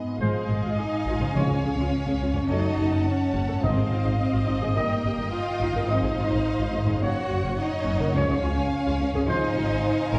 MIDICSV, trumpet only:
0, 0, Header, 1, 2, 480
1, 0, Start_track
1, 0, Tempo, 567108
1, 181, Time_signature, 4, 2, 24, 8
1, 8623, End_track
2, 0, Start_track
2, 0, Title_t, "Trumpet"
2, 0, Program_c, 0, 56
2, 174, Note_on_c, 0, 72, 51
2, 347, Note_off_c, 0, 72, 0
2, 1145, Note_on_c, 0, 73, 47
2, 1315, Note_off_c, 0, 73, 0
2, 2102, Note_on_c, 0, 73, 45
2, 2275, Note_off_c, 0, 73, 0
2, 3077, Note_on_c, 0, 75, 53
2, 3245, Note_off_c, 0, 75, 0
2, 4033, Note_on_c, 0, 75, 53
2, 4201, Note_off_c, 0, 75, 0
2, 4988, Note_on_c, 0, 75, 54
2, 5157, Note_off_c, 0, 75, 0
2, 5946, Note_on_c, 0, 73, 51
2, 6113, Note_off_c, 0, 73, 0
2, 6905, Note_on_c, 0, 73, 57
2, 7071, Note_off_c, 0, 73, 0
2, 7858, Note_on_c, 0, 72, 64
2, 8026, Note_off_c, 0, 72, 0
2, 8623, End_track
0, 0, End_of_file